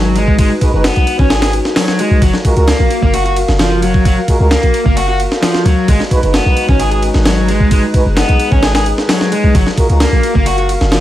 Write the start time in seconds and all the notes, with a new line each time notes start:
Already playing: G#1 F#3 G#3 D#4 F#4 B4
0.15 G#3, ride
0.28 kick
0.38 G#3, kick, ride
0.61 G#3 D#4 F#4 B4, kick, ride
0.74 F#1 G#3 D#4 F#4 B4
0.84 B3, snare, ride
0.96 B1, ride
1.07 ride
1.19 G#1 C#4, kick
1.30 G#4, snare, ride
1.42 G#4, snare, ride
1.53 ride
1.65 snare
1.76 F#3, snare, open hi-hat
1.88 snare
1.99 G#3, ride
2.11 B1
2.22 F#1 F#3 A#4 F5, kick, ride
2.33 snare
2.45 G#3 F4 F#4 A#4, kick, ride
2.56 C#2 G#3 F4 F#4 A#4, ride
2.68 A#3, snare, ride
2.80 A#1
2.91 ride
3.03 F#1 A#3, kick
3.14 F#4, ride
3.26 F#4, ride
3.36 ride
3.48 F#1, snare
3.59 F3, snare, ride
3.82 F#3, ride
3.94 kick
4.05 F#3, kick, ride
4.28 G#3 F4 F#4 A#4, kick, ride
4.40 C#2 G#3 F4 F#4 A#4
4.51 A#3, snare, ride
4.63 A#1, ride
4.74 ride
4.86 F#1 A#3, kick
4.97 F#4, ride
5.09 F#4
5.20 ride
5.32 snare
5.42 F3, snare, ride
5.54 snare
5.65 C#2 F#3, ride
5.88 G#1 G#3 D#4 F#4 B4, kick, ride
6.00 snare
6.11 G#3 D#4 F#4 B4, kick, ride
6.23 F#1 G#3 D#4 F#4 B4, ride
6.34 B3, snare, ride
6.46 B1
6.57 ride
6.69 G#1 C#4, kick
6.80 G#4, ride
6.91 G#4, ride
7.03 ride
7.14 G#1, snare
7.25 F#3, snare, ride
7.48 G#3, ride
7.60 kick
7.71 G#3 G#4, kick, ride
7.94 G#3 D#4 F#4 B4, kick, ride
8.06 F#1
8.17 B3, snare, ride
8.29 B1, ride
8.40 ride
8.52 G#1 C#4, kick
8.63 G#4, snare, ride
8.75 G#4, snare, ride
8.86 ride
8.98 snare
9.09 F#3, snare, open hi-hat
9.21 snare
9.32 G#3, ride
9.44 B1
9.55 F#1 F#3 F#4 A#4 F5, kick, ride
9.67 snare
9.78 G#3 F4 F#4 A#4, kick, ride
9.90 C#2 G#3 F4 F#4 A#4, ride
10.00 A#3, snare, ride
10.12 A#1
10.23 ride
10.35 F#1 A#3, kick
10.46 F#4, ride
10.58 F#4, ride
10.69 ride
10.81 F#1, snare
10.92 F3, snare, ride